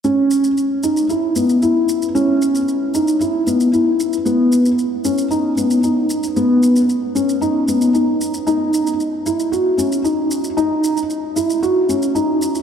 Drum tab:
SH |x-xxx-xxx-xxx-xx|x-xxx-xxx-xxx-xx|x-xxx-xxx-xxx-xx|x-xxx-xxx-xxx-xx|

SH |x-xxx-xxx-xxx-xx|x-xxx-xxx-xxx-xx|